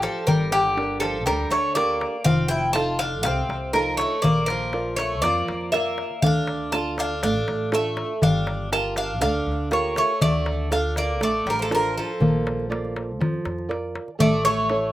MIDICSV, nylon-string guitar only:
0, 0, Header, 1, 2, 480
1, 0, Start_track
1, 0, Tempo, 497100
1, 266, Time_signature, 4, 2, 24, 8
1, 14407, End_track
2, 0, Start_track
2, 0, Title_t, "Nylon-string guitar"
2, 0, Program_c, 0, 24
2, 0, Note_on_c, 0, 62, 51
2, 0, Note_on_c, 0, 65, 47
2, 0, Note_on_c, 0, 69, 57
2, 167, Note_off_c, 0, 62, 0
2, 169, Note_off_c, 0, 65, 0
2, 170, Note_off_c, 0, 69, 0
2, 257, Note_on_c, 0, 55, 66
2, 725, Note_off_c, 0, 55, 0
2, 741, Note_on_c, 0, 62, 50
2, 745, Note_on_c, 0, 67, 44
2, 751, Note_on_c, 0, 70, 57
2, 1125, Note_off_c, 0, 62, 0
2, 1127, Note_off_c, 0, 67, 0
2, 1129, Note_off_c, 0, 70, 0
2, 1224, Note_on_c, 0, 50, 67
2, 1687, Note_off_c, 0, 50, 0
2, 1694, Note_on_c, 0, 62, 50
2, 1700, Note_on_c, 0, 67, 46
2, 1705, Note_on_c, 0, 70, 56
2, 2080, Note_off_c, 0, 62, 0
2, 2082, Note_off_c, 0, 67, 0
2, 2086, Note_off_c, 0, 70, 0
2, 2179, Note_on_c, 0, 53, 69
2, 2644, Note_off_c, 0, 53, 0
2, 2646, Note_on_c, 0, 63, 48
2, 2652, Note_on_c, 0, 65, 48
2, 2657, Note_on_c, 0, 69, 57
2, 3035, Note_off_c, 0, 63, 0
2, 3036, Note_off_c, 0, 65, 0
2, 3041, Note_off_c, 0, 69, 0
2, 3126, Note_on_c, 0, 48, 67
2, 3597, Note_off_c, 0, 48, 0
2, 3605, Note_on_c, 0, 63, 52
2, 3609, Note_on_c, 0, 65, 47
2, 3613, Note_on_c, 0, 69, 54
2, 3994, Note_off_c, 0, 63, 0
2, 3996, Note_off_c, 0, 65, 0
2, 3998, Note_off_c, 0, 69, 0
2, 4092, Note_on_c, 0, 58, 63
2, 4560, Note_off_c, 0, 58, 0
2, 4573, Note_on_c, 0, 65, 49
2, 4576, Note_on_c, 0, 70, 43
2, 4579, Note_on_c, 0, 74, 56
2, 4959, Note_off_c, 0, 65, 0
2, 4960, Note_off_c, 0, 70, 0
2, 4960, Note_off_c, 0, 74, 0
2, 5054, Note_on_c, 0, 53, 62
2, 5521, Note_off_c, 0, 53, 0
2, 5539, Note_on_c, 0, 65, 50
2, 5542, Note_on_c, 0, 70, 43
2, 5547, Note_on_c, 0, 74, 54
2, 5923, Note_off_c, 0, 65, 0
2, 5924, Note_off_c, 0, 70, 0
2, 5928, Note_off_c, 0, 74, 0
2, 6021, Note_on_c, 0, 50, 66
2, 6486, Note_off_c, 0, 50, 0
2, 6497, Note_on_c, 0, 62, 49
2, 6501, Note_on_c, 0, 65, 46
2, 6505, Note_on_c, 0, 69, 53
2, 6883, Note_off_c, 0, 62, 0
2, 6885, Note_off_c, 0, 65, 0
2, 6887, Note_off_c, 0, 69, 0
2, 6984, Note_on_c, 0, 57, 67
2, 7449, Note_off_c, 0, 57, 0
2, 7450, Note_on_c, 0, 62, 49
2, 7455, Note_on_c, 0, 65, 48
2, 7458, Note_on_c, 0, 69, 56
2, 7839, Note_off_c, 0, 62, 0
2, 7843, Note_off_c, 0, 65, 0
2, 7843, Note_off_c, 0, 69, 0
2, 7932, Note_on_c, 0, 55, 68
2, 8404, Note_off_c, 0, 55, 0
2, 8418, Note_on_c, 0, 65, 49
2, 8421, Note_on_c, 0, 67, 44
2, 8425, Note_on_c, 0, 70, 56
2, 8805, Note_off_c, 0, 67, 0
2, 8807, Note_off_c, 0, 65, 0
2, 8809, Note_off_c, 0, 70, 0
2, 8891, Note_on_c, 0, 50, 68
2, 9364, Note_off_c, 0, 50, 0
2, 9373, Note_on_c, 0, 65, 53
2, 9378, Note_on_c, 0, 67, 46
2, 9383, Note_on_c, 0, 70, 57
2, 9765, Note_off_c, 0, 65, 0
2, 9766, Note_off_c, 0, 67, 0
2, 9767, Note_off_c, 0, 70, 0
2, 9864, Note_on_c, 0, 50, 67
2, 10332, Note_off_c, 0, 50, 0
2, 10337, Note_on_c, 0, 62, 49
2, 10343, Note_on_c, 0, 65, 44
2, 10346, Note_on_c, 0, 69, 56
2, 10727, Note_off_c, 0, 62, 0
2, 10729, Note_off_c, 0, 65, 0
2, 10732, Note_off_c, 0, 69, 0
2, 10820, Note_on_c, 0, 57, 67
2, 11291, Note_off_c, 0, 57, 0
2, 11302, Note_on_c, 0, 62, 51
2, 11306, Note_on_c, 0, 65, 47
2, 11313, Note_on_c, 0, 69, 58
2, 11690, Note_off_c, 0, 62, 0
2, 11692, Note_off_c, 0, 65, 0
2, 11696, Note_off_c, 0, 69, 0
2, 11787, Note_on_c, 0, 58, 67
2, 12249, Note_off_c, 0, 58, 0
2, 12259, Note_on_c, 0, 58, 45
2, 12262, Note_on_c, 0, 65, 52
2, 12267, Note_on_c, 0, 74, 55
2, 12648, Note_off_c, 0, 65, 0
2, 12649, Note_off_c, 0, 58, 0
2, 12653, Note_off_c, 0, 74, 0
2, 12750, Note_on_c, 0, 53, 68
2, 13216, Note_on_c, 0, 65, 49
2, 13217, Note_off_c, 0, 53, 0
2, 13221, Note_on_c, 0, 70, 49
2, 13223, Note_on_c, 0, 74, 55
2, 13607, Note_off_c, 0, 65, 0
2, 13608, Note_off_c, 0, 70, 0
2, 13610, Note_off_c, 0, 74, 0
2, 13699, Note_on_c, 0, 57, 66
2, 14171, Note_off_c, 0, 57, 0
2, 14194, Note_on_c, 0, 64, 49
2, 14196, Note_on_c, 0, 69, 44
2, 14200, Note_on_c, 0, 73, 57
2, 14407, Note_off_c, 0, 64, 0
2, 14407, Note_off_c, 0, 69, 0
2, 14407, Note_off_c, 0, 73, 0
2, 14407, End_track
0, 0, End_of_file